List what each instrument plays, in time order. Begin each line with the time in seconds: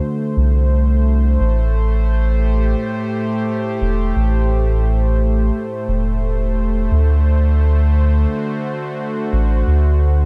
Already playing: analog synth pad D3 A3 F#4 C5
0.37 sub bass C2
1.40 sub bass A1, analog synth pad A2
2.32 analog synth pad G4
3.81 sub bass E1
4.16 sub bass A1
5.88 sub bass E1
6.91 sub bass D2, analog synth pad D3
8.22 analog synth pad F#4
9.33 sub bass A1
9.67 sub bass D2